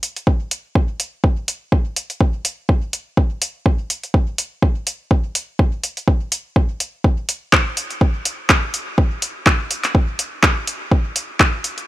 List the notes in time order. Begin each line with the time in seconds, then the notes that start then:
0.03 open hi-hat
0.16 open hi-hat
0.27 kick
0.51 open hi-hat
0.75 kick
1.00 open hi-hat
1.24 kick
1.48 open hi-hat
1.72 kick
1.96 open hi-hat
2.10 open hi-hat
2.21 kick
2.45 open hi-hat
2.69 kick
2.93 open hi-hat
3.17 kick
3.42 open hi-hat
3.66 kick
3.90 open hi-hat
4.03 open hi-hat
4.14 kick
4.38 open hi-hat
4.62 kick
4.87 open hi-hat
5.11 kick
5.35 open hi-hat
5.59 kick
5.84 open hi-hat
5.97 open hi-hat
6.08 kick
6.32 open hi-hat
6.56 kick
6.80 open hi-hat
7.04 kick
7.29 open hi-hat
7.53 kick, clap
7.77 open hi-hat
7.91 open hi-hat
8.01 kick
8.25 open hi-hat
8.50 kick, clap
8.74 open hi-hat
8.98 kick
9.22 open hi-hat
9.46 kick, clap
9.71 open hi-hat
9.84 clap, open hi-hat
9.95 kick
10.19 open hi-hat
10.43 kick, clap
10.67 open hi-hat
10.92 kick
11.16 open hi-hat
11.40 kick, clap
11.64 open hi-hat
11.78 open hi-hat